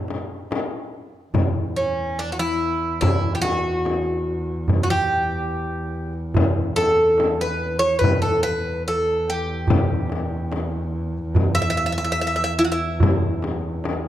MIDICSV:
0, 0, Header, 1, 5, 480
1, 0, Start_track
1, 0, Tempo, 834492
1, 771, Time_signature, 4, 2, 24, 8
1, 8099, End_track
2, 0, Start_track
2, 0, Title_t, "Bouzouki"
2, 0, Program_c, 0, 25
2, 0, Note_on_c, 0, 64, 72
2, 271, Note_off_c, 0, 64, 0
2, 1015, Note_on_c, 0, 61, 64
2, 1260, Note_on_c, 0, 62, 72
2, 1261, Note_off_c, 0, 61, 0
2, 1333, Note_off_c, 0, 62, 0
2, 1336, Note_on_c, 0, 66, 57
2, 1374, Note_off_c, 0, 66, 0
2, 1377, Note_on_c, 0, 64, 89
2, 1724, Note_off_c, 0, 64, 0
2, 1731, Note_on_c, 0, 64, 78
2, 1918, Note_off_c, 0, 64, 0
2, 1926, Note_on_c, 0, 67, 68
2, 1962, Note_off_c, 0, 67, 0
2, 1964, Note_on_c, 0, 66, 91
2, 2774, Note_off_c, 0, 66, 0
2, 2780, Note_on_c, 0, 66, 72
2, 2817, Note_off_c, 0, 66, 0
2, 2820, Note_on_c, 0, 67, 80
2, 3523, Note_off_c, 0, 67, 0
2, 3889, Note_on_c, 0, 69, 85
2, 4261, Note_off_c, 0, 69, 0
2, 4263, Note_on_c, 0, 71, 82
2, 4480, Note_off_c, 0, 71, 0
2, 4482, Note_on_c, 0, 73, 92
2, 4593, Note_off_c, 0, 73, 0
2, 4595, Note_on_c, 0, 71, 86
2, 4725, Note_off_c, 0, 71, 0
2, 4727, Note_on_c, 0, 69, 81
2, 4847, Note_off_c, 0, 69, 0
2, 4849, Note_on_c, 0, 71, 99
2, 5074, Note_off_c, 0, 71, 0
2, 5106, Note_on_c, 0, 69, 82
2, 5347, Note_off_c, 0, 69, 0
2, 5347, Note_on_c, 0, 67, 78
2, 6171, Note_off_c, 0, 67, 0
2, 6642, Note_on_c, 0, 76, 100
2, 6675, Note_off_c, 0, 76, 0
2, 6682, Note_on_c, 0, 76, 70
2, 6723, Note_off_c, 0, 76, 0
2, 6730, Note_on_c, 0, 76, 78
2, 6764, Note_off_c, 0, 76, 0
2, 6771, Note_on_c, 0, 76, 65
2, 6815, Note_off_c, 0, 76, 0
2, 6822, Note_on_c, 0, 76, 71
2, 6852, Note_off_c, 0, 76, 0
2, 6858, Note_on_c, 0, 76, 55
2, 6883, Note_off_c, 0, 76, 0
2, 6890, Note_on_c, 0, 76, 73
2, 6921, Note_off_c, 0, 76, 0
2, 6928, Note_on_c, 0, 76, 69
2, 6964, Note_off_c, 0, 76, 0
2, 6971, Note_on_c, 0, 76, 78
2, 7019, Note_off_c, 0, 76, 0
2, 7025, Note_on_c, 0, 76, 65
2, 7051, Note_off_c, 0, 76, 0
2, 7058, Note_on_c, 0, 76, 70
2, 7102, Note_off_c, 0, 76, 0
2, 7109, Note_on_c, 0, 76, 65
2, 7148, Note_off_c, 0, 76, 0
2, 7155, Note_on_c, 0, 76, 83
2, 7206, Note_off_c, 0, 76, 0
2, 7240, Note_on_c, 0, 64, 97
2, 7271, Note_off_c, 0, 64, 0
2, 7273, Note_on_c, 0, 66, 79
2, 7313, Note_off_c, 0, 66, 0
2, 7315, Note_on_c, 0, 64, 88
2, 8099, Note_off_c, 0, 64, 0
2, 8099, End_track
3, 0, Start_track
3, 0, Title_t, "Double bass"
3, 0, Program_c, 1, 43
3, 767, Note_on_c, 1, 40, 62
3, 4610, Note_off_c, 1, 40, 0
3, 4613, Note_on_c, 1, 40, 72
3, 8099, Note_off_c, 1, 40, 0
3, 8099, End_track
4, 0, Start_track
4, 0, Title_t, "Darbuka"
4, 47, Note_on_c, 9, 63, 64
4, 105, Note_off_c, 9, 63, 0
4, 172, Note_on_c, 9, 62, 26
4, 229, Note_off_c, 9, 62, 0
4, 292, Note_on_c, 9, 63, 70
4, 350, Note_off_c, 9, 63, 0
4, 537, Note_on_c, 9, 62, 25
4, 594, Note_off_c, 9, 62, 0
4, 653, Note_on_c, 9, 62, 27
4, 711, Note_off_c, 9, 62, 0
4, 770, Note_on_c, 9, 64, 92
4, 827, Note_off_c, 9, 64, 0
4, 896, Note_on_c, 9, 62, 24
4, 953, Note_off_c, 9, 62, 0
4, 1016, Note_on_c, 9, 62, 22
4, 1074, Note_off_c, 9, 62, 0
4, 1619, Note_on_c, 9, 62, 23
4, 1676, Note_off_c, 9, 62, 0
4, 1739, Note_on_c, 9, 64, 100
4, 1797, Note_off_c, 9, 64, 0
4, 1859, Note_on_c, 9, 62, 25
4, 1917, Note_off_c, 9, 62, 0
4, 1974, Note_on_c, 9, 63, 66
4, 2031, Note_off_c, 9, 63, 0
4, 2216, Note_on_c, 9, 63, 76
4, 2273, Note_off_c, 9, 63, 0
4, 2573, Note_on_c, 9, 62, 27
4, 2631, Note_off_c, 9, 62, 0
4, 2691, Note_on_c, 9, 64, 88
4, 2749, Note_off_c, 9, 64, 0
4, 2815, Note_on_c, 9, 62, 26
4, 2873, Note_off_c, 9, 62, 0
4, 2936, Note_on_c, 9, 62, 22
4, 2993, Note_off_c, 9, 62, 0
4, 3532, Note_on_c, 9, 62, 26
4, 3590, Note_off_c, 9, 62, 0
4, 3649, Note_on_c, 9, 64, 110
4, 3707, Note_off_c, 9, 64, 0
4, 3774, Note_on_c, 9, 62, 27
4, 3831, Note_off_c, 9, 62, 0
4, 3889, Note_on_c, 9, 63, 68
4, 3947, Note_off_c, 9, 63, 0
4, 4129, Note_on_c, 9, 63, 78
4, 4186, Note_off_c, 9, 63, 0
4, 4373, Note_on_c, 9, 62, 26
4, 4431, Note_off_c, 9, 62, 0
4, 4609, Note_on_c, 9, 64, 81
4, 4667, Note_off_c, 9, 64, 0
4, 4730, Note_on_c, 9, 62, 28
4, 4788, Note_off_c, 9, 62, 0
4, 4851, Note_on_c, 9, 62, 28
4, 4909, Note_off_c, 9, 62, 0
4, 5450, Note_on_c, 9, 62, 23
4, 5507, Note_off_c, 9, 62, 0
4, 5564, Note_on_c, 9, 64, 105
4, 5622, Note_off_c, 9, 64, 0
4, 5807, Note_on_c, 9, 63, 66
4, 5864, Note_off_c, 9, 63, 0
4, 6049, Note_on_c, 9, 63, 77
4, 6106, Note_off_c, 9, 63, 0
4, 6412, Note_on_c, 9, 62, 26
4, 6469, Note_off_c, 9, 62, 0
4, 6527, Note_on_c, 9, 64, 98
4, 6584, Note_off_c, 9, 64, 0
4, 6652, Note_on_c, 9, 62, 28
4, 6709, Note_off_c, 9, 62, 0
4, 6766, Note_on_c, 9, 62, 23
4, 6824, Note_off_c, 9, 62, 0
4, 7003, Note_on_c, 9, 62, 26
4, 7061, Note_off_c, 9, 62, 0
4, 7124, Note_on_c, 9, 62, 25
4, 7181, Note_off_c, 9, 62, 0
4, 7478, Note_on_c, 9, 64, 110
4, 7536, Note_off_c, 9, 64, 0
4, 7599, Note_on_c, 9, 62, 23
4, 7656, Note_off_c, 9, 62, 0
4, 7722, Note_on_c, 9, 63, 74
4, 7779, Note_off_c, 9, 63, 0
4, 7841, Note_on_c, 9, 62, 24
4, 7899, Note_off_c, 9, 62, 0
4, 7961, Note_on_c, 9, 63, 79
4, 8018, Note_off_c, 9, 63, 0
4, 8099, End_track
5, 0, Start_track
5, 0, Title_t, "Frame drum"
5, 60, Note_on_c, 9, 64, 67
5, 118, Note_off_c, 9, 64, 0
5, 299, Note_on_c, 9, 64, 83
5, 356, Note_off_c, 9, 64, 0
5, 774, Note_on_c, 9, 64, 91
5, 832, Note_off_c, 9, 64, 0
5, 1738, Note_on_c, 9, 64, 87
5, 1796, Note_off_c, 9, 64, 0
5, 1982, Note_on_c, 9, 64, 68
5, 2040, Note_off_c, 9, 64, 0
5, 2220, Note_on_c, 9, 64, 68
5, 2278, Note_off_c, 9, 64, 0
5, 2700, Note_on_c, 9, 64, 68
5, 2757, Note_off_c, 9, 64, 0
5, 3662, Note_on_c, 9, 64, 96
5, 3719, Note_off_c, 9, 64, 0
5, 3901, Note_on_c, 9, 64, 69
5, 3959, Note_off_c, 9, 64, 0
5, 4141, Note_on_c, 9, 64, 76
5, 4198, Note_off_c, 9, 64, 0
5, 4624, Note_on_c, 9, 64, 90
5, 4681, Note_off_c, 9, 64, 0
5, 5581, Note_on_c, 9, 64, 101
5, 5639, Note_off_c, 9, 64, 0
5, 5821, Note_on_c, 9, 64, 62
5, 5879, Note_off_c, 9, 64, 0
5, 6054, Note_on_c, 9, 64, 69
5, 6111, Note_off_c, 9, 64, 0
5, 6535, Note_on_c, 9, 64, 80
5, 6592, Note_off_c, 9, 64, 0
5, 7493, Note_on_c, 9, 64, 92
5, 7551, Note_off_c, 9, 64, 0
5, 7730, Note_on_c, 9, 64, 69
5, 7788, Note_off_c, 9, 64, 0
5, 7969, Note_on_c, 9, 64, 76
5, 8026, Note_off_c, 9, 64, 0
5, 8099, End_track
0, 0, End_of_file